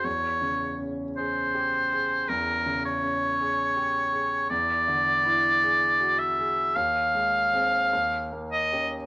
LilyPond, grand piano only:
\new Staff \with { instrumentName = "Grand piano" } { \time 4/4 \key des \lydian \tempo 4 = 54 \tuplet 3/2 { fes,8 des8 des'8 aes'8 g'8 aes'8 fes,8 des8 des'8 aes'8 g'8 aes'8 } | \tuplet 3/2 { e,8 d8 e'8 gis'8 ges'8 gis'8 ees,8 aes8 <c' aes'>8 ees,8 bes8 <des' g'>8 } | }